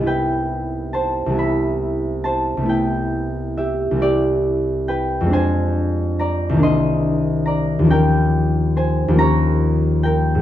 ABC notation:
X:1
M:6/8
L:1/8
Q:3/8=46
K:Cphr
V:1 name="Harp"
[G=Bcg]2 [c=a] [=e=b]2 [ca] | [=Bg]2 [G=e] [G=d]2 [_cg] | [K:Eb] [ca]2 [db] [ec']2 [db] | [Bg]2 [ca] [_db]2 [Bg] |]
V:2 name="Harp"
[C,,G,=B,C=E]3 [C,,G,B,E]3 | [C,,=A,=B,=E]3 [C,,G,CE]3 | [K:Eb] [F,,A,CD]3 [C,,E,B,D]3 | [E,,F,B,_D]3 [E,,F,B,D]3 |]